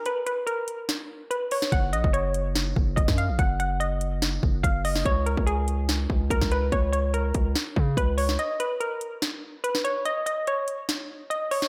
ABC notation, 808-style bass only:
X:1
M:4/4
L:1/16
Q:1/4=144
K:Dbmix
V:1 name="808-style bass" clef=bass
z16 | G,,,2 B,,, G,,,6- G,,, G,,,2 G,,, G,,2 B,,, | G,,,8- G,,,2 G,,,2 G,,,4 | D,,3 D,,6- D,, D,,2 D,,4 |
D,,6 D,,2 z2 D,2 D,,4 | z16 | z16 |]